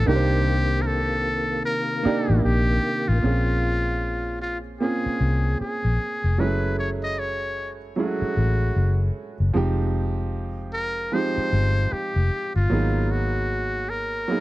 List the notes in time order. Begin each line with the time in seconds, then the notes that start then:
0.06 C2 C3 D#3 A#3 D4 D#4 G4 A#4
0.16 C5
0.81 A#4
0.87 A4
1.65 A#4
2.03 A#3 D4 D#4 G4 D5, muted fingered electric bass stroke
2.30 A1
2.44 A#1 G4
3.08 A1 F4
3.22 A#1 A#3 C4 C#4 F4 G#4
4.42 F4
4.80 A#3 C4 C#4 F4 G#4
5.06 muted fingered electric bass stroke
5.21 C2
5.60 G#4, muted fingered electric bass stroke
5.85 A#1
6.24 F1
6.38 F#1 F#3 G#3 C#4 E4 G#4 B4
6.45 A3
6.79 C#5
7.03 D#5
7.19 C#5
7.96 F#3 G#3 C#4 E4 F#4 G#4
8.04 A3
8.22 muted fingered electric bass stroke
8.37 A1
8.76 F#1
9.40 F#1
9.53 F1 F3 G#3 C4 D#4 G4
10.74 A#4
11.12 F3 G#3 C4 D#4 G4 C5
11.38 muted fingered electric bass stroke
11.53 G1
11.92 G4, muted fingered electric bass stroke
12.16 F1
12.56 G1 F4
12.69 G#1 F#3 A#3 B3 D#4 G#4
13.11 F#4
13.89 A#4
14.28 F#3 A#3 B3 D#4 G#4